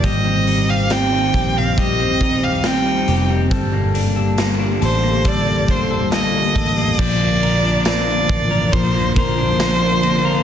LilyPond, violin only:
\new Staff \with { instrumentName = "Violin" } { \time 4/4 \key bes \major \tempo 4 = 69 ees''8. f''16 g''8. f''16 ees''8. f''16 g''8. r16 | r4. c''8 d''8 c''8 ees''4 | d''4 d''4 c''8 c''4. | }